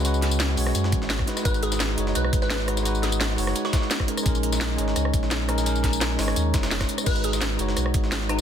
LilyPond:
<<
  \new Staff \with { instrumentName = "Synth pluck" } { \time 4/4 \key gis \minor \tempo 4 = 171 r1 | b'8 gis'8 r4 b'8 r16 b'16 b'16 r8. | r8 gis'8 r4 r16 fis'4 r8. | r1 |
r1 | b'8 gis'8 r2 r8 dis'8 | }
  \new Staff \with { instrumentName = "Tine electric piano" } { \time 4/4 \key gis \minor <gis cis' fis' b'>4. <gis cis' fis' cis''>2 <gis dis' fis' b'>8 | <gis dis' fis' b'>4. <gis dis' fis' cis''>2 <gis dis' fis' b'>8 | <gis dis' fis' b'>4. <gis dis' fis' cis''>2 <gis cis' dis' ais'>8 | <gis cis' dis' ais'>4. <gis cis' dis' cis''>2 <gis cis' dis' ais'>8 |
<gis cis' dis' ais'>4. <gis cis' dis' cis''>2 r8 | <gis dis' fis' b'>4. <gis dis' fis' cis''>2 <gis dis' fis' b'>8 | }
  \new Staff \with { instrumentName = "Sub bass" } { \clef bass \time 4/4 \key gis \minor cis,4. b,,8 fis,8 gis,,4 r8 | gis,,4. fis,,8 b,,8 gis,,4.~ | gis,,4. fis,,8 r2 | ais,,4. gis,,8 cis,8 ais,,4.~ |
ais,,4. gis,,8 dis,8 eis,,4 r8 | gis,,4. fis,,8 b,,8 gis,,4. | }
  \new DrumStaff \with { instrumentName = "Drums" } \drummode { \time 4/4 <hh tamb>16 tamb16 <hh sn>16 tamb16 <hh sn tamb>16 sn16 <hh hho tamb>16 <ss sn>16 <hh tamb>16 sn16 <hh bd tamb>16 sn16 <hh sn tamb>16 <bd ss sn>16 <hh sn>16 <ss sn tamb>16 | <hh bd tamb>16 <hh tamb>16 hh16 <sn tamb>16 <hh sn tamb>16 sn16 <hh tamb>16 sn16 <hh ss tamb>16 ss16 <hh bd tamb>16 sn16 <hh sn tamb>16 sn16 <hh ss>16 <sn tamb>16 | <hh tamb>16 tamb16 <hh sn>16 tamb16 <hh sn tamb>16 sn16 <hh hho tamb>16 <ss sn>16 <hh tamb>16 sn16 <hh bd sn tamb>16 sn16 <hh sn tamb>16 <bd ss sn>16 hh16 <ss tamb>16 | <hh bd tamb>16 <hh tamb>16 hh16 <sn tamb>16 <hh sn tamb>16 sn16 <hh tamb>16 sn16 <hh ss tamb>16 ss16 <hh bd tamb>16 sn16 <hh sn tamb>16 sn16 <hh ss>16 <sn tamb>16 |
<hh tamb>16 tamb16 <hh bd sn>16 tamb16 <hh sn tamb>16 sn16 <hh hho sn tamb>16 <ss sn>16 <hh tamb>8 <hh bd sn tamb>16 <hh sn>16 <hh sn tamb>16 <hh bd ss sn>16 <hh tamb>16 <ss tamb>16 | <cymc hh bd tamb>16 <hh tamb>16 hh16 <sn tamb>16 <hh sn tamb>16 sn16 <hh tamb>16 sn16 <hh ss tamb>16 ss16 <hh bd tamb>16 sn16 <hh sn tamb>16 sn16 <hh ss>8 | }
>>